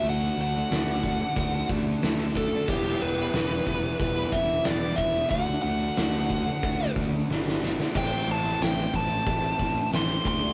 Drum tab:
CC |----------------|x---------------|----------------|x---------------|
HH |o-o-o-o-o-o-o-o-|--o-o-o-o-o-o-o-|o-o-o-o-o-o-----|--o-o-o-o-o-o-o-|
SD |----o-------o---|----o-------o---|----o-------oooo|----o-------o---|
BD |------o-o-o---o-|o-----o-o-o---o-|o-----o-o-o-----|o-----o-o-o---o-|